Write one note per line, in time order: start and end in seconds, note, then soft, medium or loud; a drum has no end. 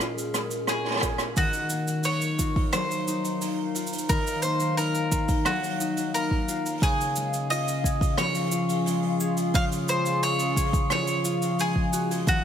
0.00 1.42 A#2 medium
0.00 0.34 G#3 medium
0.00 0.35 A#3 medium
0.00 0.68 C#4 medium
0.00 2.42 C#4 medium
0.00 1.03 F4 medium
0.00 3.19 G#4 loud
0.00 8.78 A#4 medium
0.00 1.37 F5 medium
0.00 cross-stick medium
0.00 cabasa medium
0.18 cabasa soft
0.34 1.42 G#3 medium
0.34 cross-stick medium
0.34 cabasa medium
0.51 cabasa soft
0.67 3.58 C#4 medium
0.67 1.37 G#4 medium
0.67 cross-stick medium
0.67 cabasa medium
0.85 cross-stick soft
0.87 cross-stick soft
0.91 cross-stick soft
0.93 cross-stick soft
0.96 cross-stick soft
0.99 cross-stick medium
1.01 2.39 F4 medium
1.01 kick medium
1.01 cross-stick medium
1.01 cabasa medium
1.18 cross-stick medium
1.18 cabasa soft
1.36 4.08 D#3 medium
1.36 8.67 D#4 medium
1.36 2.07 F#4 medium
1.36 kick loud
1.36 open hi-hat medium
1.36 cabasa medium
1.51 6.82 F#3 medium
1.51 open hi-hat medium
1.51 cabasa soft
1.70 3.41 A#3 medium
1.70 cabasa medium
1.79 12.44 F5 medium
1.88 cabasa medium
2.03 3.07 D#4 medium
2.03 2.72 C#5 medium
2.03 open hi-hat medium
2.03 cabasa medium
2.22 cabasa soft
2.39 3.75 F4 medium
2.39 kick medium
2.39 cabasa medium
2.56 kick loud
2.56 open hi-hat medium
2.72 4.14 F#3 medium
2.72 4.09 C5 loud
2.72 cross-stick medium
2.72 open hi-hat medium
2.72 cabasa medium
2.90 open hi-hat medium
2.90 cabasa soft
3.08 4.78 D#4 medium
3.08 cabasa medium
3.24 open hi-hat medium
3.24 cabasa medium
3.41 4.43 A#3 medium
3.41 open hi-hat medium
3.41 cabasa medium
3.74 6.48 F4 medium
3.74 open hi-hat soft
3.74 cabasa medium
3.87 cabasa medium
3.92 open hi-hat soft
3.92 cabasa soft
3.98 cabasa soft
4.09 6.87 D#3 medium
4.09 4.42 A#4 medium
4.09 kick loud
4.09 open hi-hat medium
4.09 cabasa medium
4.26 open hi-hat soft
4.26 cabasa medium
4.42 6.14 A#3 medium
4.42 4.77 C5 medium
4.42 cabasa medium
4.60 cabasa soft
4.77 5.80 D#4 medium
4.77 5.48 A#4 medium
4.77 open hi-hat medium
4.77 cabasa medium
4.95 cabasa soft
5.12 kick medium
5.12 cabasa loud
5.28 kick loud
5.28 open hi-hat medium
5.28 cabasa soft
5.45 6.87 F#3 medium
5.45 6.10 F#4 medium
5.45 cross-stick medium
5.45 open hi-hat medium
5.45 cabasa medium
5.63 open hi-hat medium
5.63 cabasa soft
5.66 open hi-hat soft
5.69 open hi-hat soft
5.71 open hi-hat soft
5.74 open hi-hat soft
5.77 open hi-hat soft
5.77 cabasa medium
5.81 8.51 D#4 medium
5.97 open hi-hat soft
5.97 cabasa medium
6.14 9.36 A#3 medium
6.14 6.84 A#4 medium
6.14 open hi-hat medium
6.14 cabasa medium
6.31 kick medium
6.31 open hi-hat soft
6.49 7.50 F4 medium
6.49 cabasa medium
6.66 open hi-hat soft
6.66 cabasa medium
6.69 open hi-hat soft
6.72 open hi-hat soft
6.75 open hi-hat soft
6.77 open hi-hat soft
6.80 9.53 C#3 medium
6.80 12.44 C#4 medium
6.80 kick loud
6.80 open hi-hat soft
6.82 7.47 G#4 loud
6.82 open hi-hat medium
6.82 cabasa medium
7.00 open hi-hat soft
7.00 cabasa soft
7.04 12.27 F4 medium
7.16 8.85 G#3 medium
7.16 cabasa medium
7.34 cabasa medium
7.50 8.52 F4 medium
7.50 8.18 D#5 loud
7.50 open hi-hat medium
7.50 cabasa medium
7.58 12.44 G#4 medium
7.68 cabasa soft
7.84 9.20 G#4 medium
7.84 kick medium
7.84 cabasa loud
8.01 kick loud
8.01 open hi-hat medium
8.01 cabasa medium
8.18 10.90 F3 medium
8.18 9.59 C#5 loud
8.18 cross-stick medium
8.18 open hi-hat medium
8.18 cabasa medium
8.35 open hi-hat medium
8.35 cabasa medium
8.52 10.22 F4 medium
8.52 cabasa loud
8.68 open hi-hat medium
8.68 cabasa medium
8.86 9.88 G#3 medium
8.86 open hi-hat medium
8.86 cabasa medium
9.03 open hi-hat soft
9.20 10.56 G#4 medium
9.20 cabasa medium
9.37 open hi-hat soft
9.37 cabasa soft
9.54 12.32 C#3 medium
9.54 9.64 F5 loud
9.54 kick loud
9.54 open hi-hat medium
9.54 cabasa medium
9.71 open hi-hat soft
9.71 cabasa soft
9.88 11.58 G#3 medium
9.88 10.23 C5 loud
9.88 cabasa medium
10.06 cabasa soft
10.22 11.25 F4 medium
10.22 10.91 C#5 loud
10.22 open hi-hat medium
10.22 cabasa medium
10.39 open hi-hat soft
10.39 cabasa soft
10.56 12.10 G#4 medium
10.56 kick medium
10.56 cabasa medium
10.65 open hi-hat medium
10.73 kick loud
10.73 cabasa medium
10.90 12.44 F3 medium
10.90 11.62 C#5 loud
10.90 cross-stick medium
10.90 open hi-hat medium
10.90 cabasa medium
11.07 open hi-hat medium
11.07 cabasa soft
11.25 12.44 F4 medium
11.25 cabasa medium
11.42 open hi-hat soft
11.42 cabasa medium
11.59 12.32 G#3 medium
11.59 12.28 G#4 medium
11.59 open hi-hat medium
11.59 cabasa medium
11.76 kick medium
11.76 open hi-hat soft
11.93 12.44 F#4 medium
11.93 cabasa medium
12.11 12.44 G#4 medium
12.11 open hi-hat soft
12.11 cabasa soft
12.26 12.44 D#3 medium
12.26 12.44 D#4 medium
12.26 12.44 F#4 medium
12.26 kick loud
12.26 open hi-hat medium
12.26 cabasa medium